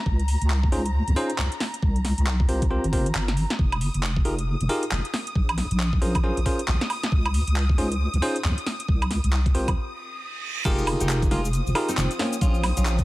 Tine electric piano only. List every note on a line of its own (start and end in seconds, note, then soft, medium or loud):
0.72 0.81 C#4 medium
0.72 0.81 D#4 medium
0.72 0.81 F4 medium
0.72 0.81 G#4 medium
0.72 0.81 C5 medium
1.16 1.30 C#4 medium
1.16 1.30 D#4 medium
1.16 1.30 F4 medium
1.16 1.30 G#4 medium
1.16 1.30 C5 loud
2.49 2.63 C4 medium
2.49 2.63 F4 medium
2.49 2.63 G4 medium
2.49 2.63 A#4 medium
2.49 2.63 C5 medium
2.71 2.85 C4 medium
2.71 2.85 F4 medium
2.71 2.85 G4 medium
2.71 2.85 A#4 medium
2.71 2.85 C5 medium
2.93 3.07 C4 medium
2.93 3.07 F4 medium
2.93 3.07 G4 medium
2.93 3.07 A#4 medium
2.93 3.07 C5 medium
4.25 4.34 D#4 medium
4.25 4.34 F4 medium
4.25 4.34 G4 medium
4.25 4.34 G#4 medium
4.25 4.34 A#4 medium
4.69 4.83 D#4 medium
4.69 4.83 F4 medium
4.69 4.83 G4 medium
4.69 4.83 G#4 medium
4.69 4.83 A#4 loud
6.02 6.16 C#4 medium
6.02 6.16 F4 medium
6.02 6.16 G#4 medium
6.02 6.16 A#4 medium
6.02 6.16 C5 medium
6.24 6.38 C#4 medium
6.24 6.38 F4 medium
6.24 6.38 G#4 medium
6.24 6.38 A#4 medium
6.24 6.38 C5 medium
6.46 6.60 C#4 medium
6.46 6.60 F4 medium
6.46 6.60 G#4 medium
6.46 6.60 A#4 medium
6.46 6.60 C5 medium
7.78 7.87 C#4 medium
7.78 7.87 D#4 medium
7.78 7.87 F4 medium
7.78 7.87 G#4 medium
7.78 7.87 C5 medium
8.22 8.36 C#4 medium
8.22 8.36 D#4 medium
8.22 8.36 F4 medium
8.22 8.36 G#4 medium
8.22 8.36 C5 loud
9.55 9.69 C4 medium
9.55 9.69 F4 medium
9.55 9.69 G4 medium
9.55 9.69 A#4 medium
9.55 9.69 C5 medium
10.65 11.28 D#4 loud
10.65 11.28 F4 medium
10.65 11.28 G4 medium
10.65 11.28 G#4 medium
10.65 11.28 A#4 loud
11.31 11.40 D#4 medium
11.31 11.40 F4 medium
11.31 11.40 G4 medium
11.31 11.40 G#4 medium
11.31 11.40 A#4 medium
11.75 11.89 D#4 medium
11.75 11.89 F4 medium
11.75 11.89 G4 medium
11.75 11.89 G#4 medium
11.75 11.89 A#4 loud